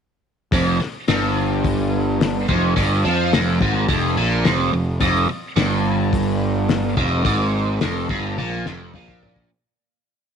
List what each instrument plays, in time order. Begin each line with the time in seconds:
0.52 picked electric bass F1, overdriven electric guitar F2, kick, open hi-hat
0.80 muted overdriven electric guitar stroke, muted picked electric bass stroke, snare
1.08 picked electric bass G1, overdriven electric guitar G2, snare, open hi-hat
1.65 kick, open hi-hat
2.21 snare, open hi-hat
2.49 picked electric bass F1, overdriven electric guitar F2, kick
2.76 picked electric bass G1, overdriven electric guitar G2, kick, open hi-hat
3.05 picked electric bass F2, overdriven electric guitar F3
3.33 picked electric bass F1, overdriven electric guitar F2, snare, open hi-hat
3.61 picked electric bass G#1, overdriven electric guitar G#2, kick
3.89 picked electric bass F1, overdriven electric guitar F2, kick, open hi-hat
4.17 picked electric bass A#1, overdriven electric guitar A#2
4.44 picked electric bass F1, overdriven electric guitar F2, snare, open hi-hat
4.73 picked electric bass F1, overdriven electric guitar F2
5.00 picked electric bass F1, overdriven electric guitar F2, kick, open hi-hat
5.29 muted picked electric bass stroke, muted overdriven electric guitar stroke
5.56 picked electric bass G1, overdriven electric guitar G2, snare, open hi-hat
6.13 kick, open hi-hat
6.69 snare, open hi-hat
6.97 picked electric bass F1, overdriven electric guitar F2, kick
7.25 picked electric bass G#1, overdriven electric guitar G#2, kick, open hi-hat
7.81 picked electric bass F1, overdriven electric guitar F2, snare, open hi-hat
8.09 picked electric bass G1, overdriven electric guitar G2, kick
8.38 picked electric bass A#1, overdriven electric guitar A#2, high tom
8.66 picked electric bass F1, overdriven electric guitar F2, snare
8.94 picked electric bass A#1, overdriven electric guitar A#2, mid tom
9.08 kick
9.23 floor tom
9.36 kick